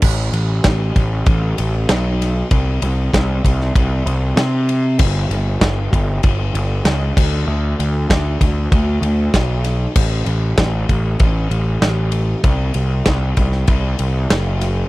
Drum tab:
CC |x---------------|----------------|x-------------x-|----------------|
RD |--x-x-x-x-x-x-x-|x-x-x-x-x-x-x-x-|--x-x-x-x-x-x---|--x-x-x-x-x-x-x-|
SD |----o-------o-o-|----o--o----o---|----o-------o---|----o-------o-o-|
BD |o---o-o-o-------|o---o-o-o-------|o---o-o-o-----o-|----o-o-o---o---|

CC |x---------------|----------------|
RD |--x-x-x-x-x-x-x-|x-x-x-x-x-x-x-x-|
SD |----o-------o---|----o--o----o-o-|
BD |o---o-o-o-------|o---o-o-o-------|